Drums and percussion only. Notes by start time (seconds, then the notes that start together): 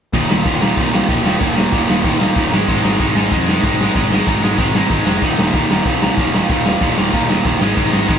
0.14 kick, open hi-hat
0.30 snare
0.45 kick, open hi-hat
0.62 snare
0.77 kick, open hi-hat
0.94 snare
1.09 kick, open hi-hat
1.25 snare
1.41 kick, open hi-hat
1.58 snare
1.73 kick, open hi-hat
1.90 snare
2.04 kick, open hi-hat
2.21 snare
2.36 kick, open hi-hat
2.54 snare
2.68 kick, crash
2.85 snare
3.00 kick, open hi-hat
3.17 snare
3.32 kick, open hi-hat
3.48 snare
3.64 kick, open hi-hat
3.81 snare
3.95 kick, open hi-hat
4.12 snare
4.27 kick, open hi-hat
4.44 snare
4.58 kick, open hi-hat
4.75 snare
4.90 kick, open hi-hat
5.07 snare
5.22 kick, crash
5.39 snare
5.53 kick, open hi-hat
5.71 snare
5.85 kick, open hi-hat
6.02 snare
6.17 kick, open hi-hat
6.34 snare
6.49 kick, open hi-hat
6.66 snare
6.81 kick, open hi-hat
6.98 snare
7.13 kick, open hi-hat
7.30 snare
7.45 kick, open hi-hat
7.61 snare
7.77 kick, crash
7.93 snare
8.08 kick, open hi-hat